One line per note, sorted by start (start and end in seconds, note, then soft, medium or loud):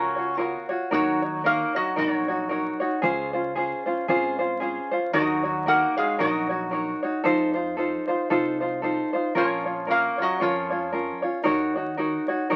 0.00 0.54 C#2 medium
0.00 0.43 C#4 medium
0.00 0.17 F4 medium
0.00 0.16 F#4 medium
0.00 0.17 A#4 medium
0.00 0.15 C#5 medium
0.00 0.66 C#5 medium
0.00 0.42 A#5 medium
0.16 0.36 F4 soft
0.16 0.38 F#4 soft
0.16 0.38 C#5 soft
0.37 0.69 F4 medium
0.37 0.69 F#4 medium
0.37 0.69 A#4 medium
0.37 0.68 C#5 medium
0.42 0.65 B3 medium
0.42 0.64 G#5 medium
0.69 0.91 F4 soft
0.69 0.91 F#4 medium
0.69 0.91 C#5 medium
0.91 1.60 D#2 medium
0.91 1.42 F#3 medium
0.91 1.23 D#4 medium
0.91 1.22 F#4 medium
0.91 1.42 F#4 medium
0.91 1.22 A#4 medium
0.91 1.21 C#5 medium
0.91 1.47 C#5 medium
1.22 1.44 D#4 soft
1.22 1.44 C#5 soft
1.44 1.73 A#3 medium
1.44 1.75 D#4 medium
1.44 1.74 F#4 medium
1.44 1.75 A#4 medium
1.44 1.74 A#4 medium
1.44 1.73 C#5 medium
1.44 1.77 F5 loud
1.75 1.96 F#3 medium
1.75 1.95 D#4 soft
1.75 1.96 F#4 soft
1.75 1.96 F#4 medium
1.75 1.96 C#5 medium
1.75 1.98 D#5 medium
1.96 2.66 A#1 medium
1.96 2.76 F#3 medium
1.96 2.28 D#4 medium
1.96 2.28 F#4 medium
1.96 2.78 F#4 medium
1.96 2.27 A#4 medium
1.96 2.27 C#5 medium
1.96 2.77 C#5 medium
2.28 2.49 D#4 soft
2.28 2.49 F#4 medium
2.28 2.50 C#5 medium
2.49 2.80 D#4 medium
2.49 2.80 F#4 medium
2.49 2.80 A#4 medium
2.49 2.79 C#5 medium
2.80 3.02 D#4 soft
2.80 3.02 F#4 medium
2.80 3.02 C#5 medium
3.02 3.72 C#2 loud
3.02 3.33 C#4 medium
3.02 3.33 F4 loud
3.02 3.33 G#4 loud
3.02 3.32 C5 loud
3.33 3.55 C#4 soft
3.33 3.55 F4 medium
3.33 3.55 C5 medium
3.55 3.86 C#4 medium
3.55 3.86 F4 medium
3.55 3.86 G#4 medium
3.55 3.85 C5 medium
3.86 4.08 C#4 medium
3.86 4.08 F4 medium
3.86 4.08 C5 medium
4.08 4.77 G#1 medium
4.08 4.39 C#4 medium
4.08 4.39 F4 medium
4.08 4.39 G#4 medium
4.08 4.38 C5 medium
4.39 4.60 C#4 soft
4.39 4.60 F4 medium
4.39 4.61 C5 medium
4.60 4.92 C#4 medium
4.60 4.92 F4 medium
4.60 4.91 G#4 medium
4.60 4.90 C5 medium
4.91 5.13 C#4 soft
4.91 5.14 F4 medium
4.91 5.13 C5 medium
5.13 5.82 D#2 loud
5.13 5.62 F#3 medium
5.13 5.44 D#4 medium
5.13 5.43 F#4 loud
5.13 5.63 F#4 medium
5.13 5.44 A#4 medium
5.13 5.42 C#5 medium
5.13 5.68 D#5 loud
5.43 5.65 D#4 soft
5.43 5.66 F#4 medium
5.43 5.66 C#5 medium
5.66 5.95 A#3 medium
5.66 5.97 D#4 medium
5.66 5.97 F#4 medium
5.66 5.97 A#4 medium
5.66 5.96 A#4 medium
5.66 5.95 C#5 medium
5.66 5.97 F#5 loud
5.97 6.18 G#3 medium
5.97 6.18 D#4 soft
5.97 6.19 F#4 soft
5.97 6.18 G#4 medium
5.97 6.19 C#5 medium
5.97 6.20 F5 medium
6.19 6.88 A#1 loud
6.19 6.99 F#3 medium
6.19 6.50 D#4 medium
6.19 6.49 F#4 medium
6.19 7.00 F#4 medium
6.19 6.50 A#4 medium
6.19 6.48 C#5 medium
6.19 6.99 D#5 medium
6.49 6.70 D#4 soft
6.49 6.71 F#4 soft
6.49 6.71 C#5 soft
6.71 7.02 D#4 medium
6.71 7.02 F#4 medium
6.71 7.02 A#4 medium
6.71 7.01 C#5 medium
7.03 7.23 D#4 medium
7.03 7.24 F#4 medium
7.03 7.24 C#5 medium
7.24 7.94 F2 medium
7.24 7.55 D#4 loud
7.24 7.54 F4 loud
7.24 7.55 A4 loud
7.24 7.53 C5 loud
7.54 7.76 D#4 soft
7.54 7.77 F4 medium
7.54 7.77 C5 medium
7.77 8.08 D#4 medium
7.77 8.08 F4 medium
7.77 8.08 A4 medium
7.77 8.06 C5 medium
8.08 8.29 D#4 soft
8.08 8.30 F4 medium
8.08 8.30 C5 medium
8.30 8.99 C2 medium
8.30 8.61 D#4 medium
8.30 8.61 F4 medium
8.30 8.61 A4 medium
8.30 8.59 C5 medium
8.61 8.82 D#4 soft
8.61 8.82 F4 medium
8.61 8.83 C5 medium
8.82 9.14 D#4 medium
8.82 9.13 F4 medium
8.82 9.13 A4 medium
8.82 9.12 C5 medium
9.13 9.35 D#4 soft
9.13 9.35 F4 medium
9.13 9.35 C5 medium
9.35 10.04 A#1 medium
9.35 9.85 F3 medium
9.35 9.66 C#4 medium
9.35 9.65 F4 medium
9.35 9.86 F4 medium
9.35 9.66 A#4 medium
9.35 9.64 C#5 loud
9.35 9.91 C#5 medium
9.66 9.87 C#4 soft
9.66 9.87 F4 soft
9.66 9.88 C#5 soft
9.87 10.18 A#3 medium
9.87 10.18 C#4 medium
9.87 10.18 F4 medium
9.87 10.18 A#4 medium
9.87 10.17 C#5 medium
9.91 10.21 F5 medium
10.18 10.40 F#3 medium
10.18 10.39 C#4 soft
10.18 10.40 F4 medium
10.18 10.40 C#5 medium
10.22 10.41 F#4 medium
10.22 10.43 D#5 medium
10.40 11.10 F2 medium
10.40 11.21 F3 medium
10.40 10.71 C#4 medium
10.40 10.71 F4 medium
10.40 11.21 F4 medium
10.40 10.71 A#4 medium
10.40 10.69 C#5 medium
10.40 11.21 C#5 medium
10.70 10.92 C#4 soft
10.70 10.93 F4 soft
10.70 10.93 C#5 medium
10.92 11.23 C#4 medium
10.92 11.22 F4 medium
10.92 11.24 A#4 medium
10.92 11.21 C#5 medium
11.22 11.43 C#4 soft
11.22 11.44 F4 medium
11.22 11.44 C#5 medium
11.44 12.15 D#2 medium
11.44 11.76 D#4 loud
11.44 11.75 F#4 loud
11.44 11.76 A#4 loud
11.44 11.74 C#5 loud
11.75 11.97 D#4 soft
11.75 11.98 F#4 medium
11.75 11.98 C#5 medium
11.97 12.28 D#4 medium
11.97 12.28 F#4 medium
11.97 12.29 A#4 medium
11.97 12.27 C#5 medium
12.28 12.49 D#4 soft
12.28 12.49 F#4 medium
12.28 12.50 C#5 medium
12.50 12.56 A#1 medium
12.50 12.56 D#4 medium
12.50 12.56 F#4 medium
12.50 12.56 A#4 medium
12.50 12.56 C#5 loud